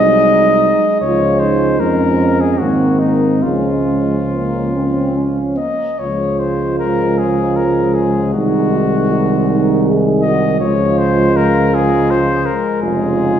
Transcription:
Already playing: C2 F#3 G#3 D#4 D#5
1.01 C#2 F3 G#3 F4 C#5
1.40 D#4 C5
1.80 F2 F3 G#3 C#4 A#4
2.41 G#4
2.58 G#2 D#3 A#3 C4 F#4
2.99 D#4
3.43 C#2 F3 G#3 C#4 F4
4.32 A#3
4.75 C4
5.16 C#4
5.58 A#3 D#5
5.99 C#2 F3 G#3 F4 C#5
6.40 C5
6.79 A#4
7.18 G#4
7.56 A#4
7.94 G#4
8.33 C2 D#3 D#4 F#4
8.73 F#4
9.12 D#4
9.88 G#4
10.22 F#4 D#5
10.60 C#2 F3 G#3 F4 C#5
10.98 C5
11.37 A#4
11.75 G#4
12.10 C5
12.46 A#4
12.82 F1 C#3 F4 G#4

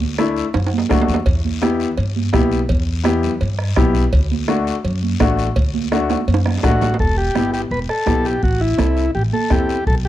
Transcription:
Already playing: D2
0.01 high conga
0.18 A3 D4 E4, bombo rim, high conga, short guiro
0.36 short guiro
0.54 F#2, cowbell, high conga, high timbale, long guiro
0.67 high timbale
0.73 high conga
0.78 low timbale
0.89 D2 A3 D4 F#4, bombo low, bombo rim, high conga, low conga, low timbale, short guiro
1.02 low timbale
1.08 E2, short guiro
1.14 low timbale
1.26 E2, bombo low, cowbell, high conga, long guiro
1.45 high conga
1.62 B3 E4 G4, bombo rim, high conga, short guiro
1.80 short guiro
1.97 G2, cowbell, high conga, long guiro
2.16 high conga
2.33 B1 B3 E4 G4, bombo low, bombo rim, high conga, low timbale, short guiro
2.51 short guiro
2.69 E2, bombo low, cowbell, high conga, long guiro
3.04 B3 E4 G4, bombo rim, high conga, short guiro
3.23 low conga, short guiro
3.41 G2, cowbell, high conga, long guiro
3.59 bombo rim
3.76 B1 B3 E4 G4, bombo low, bombo rim, high conga, low conga, low timbale, short guiro
3.95 short guiro
4.13 D2, bombo low, cowbell, high conga, long guiro
4.31 high conga
4.48 A3 D4 F#4, bombo rim, high conga, short guiro
4.67 short guiro
4.84 F#2, cowbell, high conga, long guiro
5.03 high conga
5.20 A1 A3 D4 F#4, bombo low, bombo rim, high conga, low timbale, short guiro
5.39 short guiro
5.56 D2, bombo low, cowbell, high conga, long guiro
5.74 high conga
5.92 A3 D4 F#4, bombo rim, high conga, short guiro
6.10 high conga, high timbale, short guiro
6.28 F#2, cowbell, high conga, long guiro
6.34 high timbale
6.45 bombo rim, high conga, high timbale
6.58 low timbale
6.63 A1 A3 D4 F#4, bombo low, bombo rim, short guiro
6.70 low timbale
6.81 low conga, low timbale, short guiro
6.94 low timbale
6.99 E1 A4, bombo low, high conga, long guiro
7.18 G4
7.35 G1 B3 E4 G4, bombo rim, high conga, short guiro
7.53 G4, short guiro
7.71 E1 B4, high conga, long guiro
7.89 A4, bombo rim
8.06 B1 B3 E4 G4, bombo low, bombo rim, high conga, short guiro
8.25 G4, short guiro
8.43 A1 F#4, bombo low, high conga, long guiro
8.61 E4
8.78 C2 C4 E4 A4, bombo rim, high conga, short guiro
8.97 short guiro
9.15 A1 G4, high conga, long guiro
9.33 A4, high conga
9.50 E2 C4 E4 G4 A4, bombo low, bombo rim, high conga, short guiro
9.69 short guiro
9.87 B1 A4, bombo low, high conga, long guiro
10.05 G4

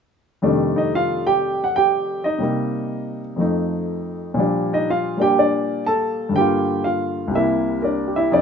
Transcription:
0.42 F2 C3 D#3 G3 A3 D4
0.76 D#4 D#5
0.95 F4 F5
1.27 G4 G5
1.64 F#5
1.76 G4 G5
2.24 D#4 D#5
2.38 C3 G3 A#3
2.43 D#4
3.36 F2 F3 A3
3.41 D#4
4.34 A#2 F3 G3
4.40 D4
4.73 D#4 D#5
4.90 F4 F5
5.17 G3 A#3 D4
5.22 G4 G5
5.39 D4 D5
5.86 A4 A5
6.29 G2
6.33 D3 G5
6.37 A#3 F4 G4
6.84 F4 F5
7.28 C2 C3
7.35 A#3 E4 E5
7.82 D4 A#4 D5
8.07 G4
8.16 E4 E5
8.32 F2 D4 D5

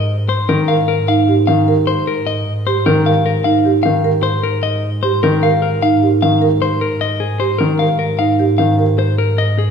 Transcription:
Already playing: G#2 D#5
0.29 C5
0.49 D#3 A#4
0.68 A#4 F5
0.88 A#4
1.08 D#4 F5
1.28 G4
1.47 D#3 F5
1.68 A#4
1.87 C5
2.07 A#4
2.27 D#5
2.67 G4 C5
2.86 D#3 A#4
3.06 A#4 F5
3.26 A#4
3.44 D#4 F5
3.65 G4
3.83 D#3 F5
4.04 A#4
4.23 C5
4.43 A#4
4.63 D#5
5.03 G4 C5
5.23 D#3 A#4
5.43 A#4 F5
5.62 A#4
5.82 D#4 F5
6.03 G4
6.22 D#3 F5
6.42 A#4
6.62 C5
6.81 A#4
7.01 D#5
7.20 G#4
7.40 G4 C5
7.58 D#3 A#4
7.79 A#4 F5
7.99 A#4
8.19 D#4 F5
8.39 G4
8.58 D#3 F5
8.79 A#4
8.99 C5
9.18 A#4
9.38 D#5
9.58 G#4

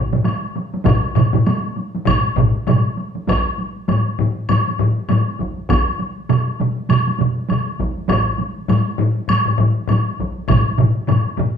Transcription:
0.13 taiko low-mid, taiko mid, taiko high
0.24 taiko high, high woodblock
0.56 taiko high
0.74 taiko high
0.85 taiko, taiko low-mid, taiko mid, taiko high, high woodblock
1.15 taiko low-mid, taiko mid, taiko high, high woodblock
1.33 taiko low-mid, taiko mid, taiko high
1.46 taiko high, high woodblock
1.76 taiko high
1.95 taiko high
2.05 taiko, taiko low-mid, taiko mid, taiko high, high woodblock
2.36 taiko, taiko low-mid, taiko mid, taiko high
2.67 taiko low-mid, taiko mid, taiko high, high woodblock
2.97 taiko high
3.15 taiko high
3.27 taiko, taiko high, high woodblock
3.46 taiko high
3.58 taiko high
3.77 taiko high
3.88 taiko low-mid, taiko high, high woodblock
4.07 taiko high
4.19 taiko low-mid, taiko high
4.49 taiko low-mid, taiko high, high woodblock
4.68 taiko high
4.79 taiko low-mid, taiko high
4.98 taiko high
5.09 taiko low-mid, taiko high, high woodblock
5.27 taiko high
5.39 taiko, taiko high
5.57 taiko high
5.70 taiko, taiko high, high woodblock
5.88 taiko high
5.99 taiko high
6.18 taiko high
6.29 taiko mid, taiko high, high woodblock
6.48 taiko high
6.60 taiko mid, taiko high
6.77 taiko high
6.89 taiko mid, taiko high, high woodblock
7.07 taiko high
7.19 taiko mid, taiko high
7.37 taiko high
7.49 taiko mid, taiko high, high woodblock
7.67 taiko high
7.79 taiko, taiko high
7.97 taiko high
8.09 taiko, taiko low-mid, taiko high, high woodblock
8.27 taiko high
8.39 taiko high
8.58 taiko high
8.68 taiko low-mid, taiko high, high woodblock
8.88 taiko high
8.98 taiko low-mid, taiko high
9.18 taiko high
9.28 taiko low-mid, taiko high, high woodblock
9.46 taiko low-mid
9.58 taiko low-mid, taiko high
9.78 taiko high
9.88 taiko low-mid, taiko high, high woodblock
10.08 taiko high
10.19 taiko, taiko high
10.38 taiko high
10.48 taiko, taiko low-mid, taiko mid, taiko high, high woodblock
10.68 taiko high
10.78 taiko low-mid, taiko mid, taiko high
10.97 taiko high
11.08 taiko low-mid, taiko mid, taiko high, high woodblock
11.27 taiko high
11.38 taiko low-mid, taiko mid, taiko high

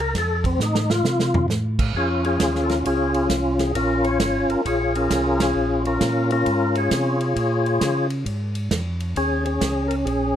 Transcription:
Already playing: C#2
0.00 A#4
0.15 F2 A4, kick, snare, ride
0.44 C4, kick, ride
0.58 A2, snare, hi-hat pedal
0.63 D#4
0.75 snare
0.90 F4, snare
1.03 C3, snare
1.20 snare
1.34 floor tom
1.48 A2, snare, hi-hat pedal
1.79 kick, crash
1.94 F2 C#4 F4 G#4, kick
2.24 C#4 F4 G#4, ride
2.40 D#2, kick, snare, hi-hat pedal, ride
2.55 snare
2.63 A4
2.69 A#4, snare, ride
2.80 F4
2.85 C#2 C#4 F4 G#4, kick, ride
3.14 ride
3.29 C2, kick, snare, hi-hat pedal, ride
3.59 G#4, snare, ride
3.75 A#1 C#4 F4 A#4, kick, ride
4.04 C#5, ride
4.20 G#1 C#5, kick, snare, hi-hat pedal, ride
4.49 G#1 A#4, ride
4.65 A#1 F4 G#4 C#5, kick, ride
4.95 C#4 F4 A#4, ride
5.10 C2, kick, snare, hi-hat pedal, ride
5.40 C#4 F4 G#4, snare, ride
5.55 A#1
5.85 C#4 F4 A#4, ride
6.01 A#2, kick, snare, hi-hat pedal, ride
6.30 C#4 F4 A#4, ride
6.46 G#2, kick, ride
6.75 F4 G#4 C#5, ride
6.91 C3, kick, snare, hi-hat pedal, ride
7.21 ride
7.36 A#2, kick, ride
7.66 ride
7.81 C#3, kick, snare, hi-hat pedal, ride
8.10 ride
8.26 G#2, kick, ride
8.55 ride
8.71 F2, kick, snare, hi-hat pedal, ride
9.00 ride
9.16 D#2 C#4 G#4, kick, ride
9.45 C#4 G#4, ride
9.61 C#2, kick, snare, hi-hat pedal, ride
9.88 A#4, ride
10.05 A#1 C#4 G#4, kick, ride

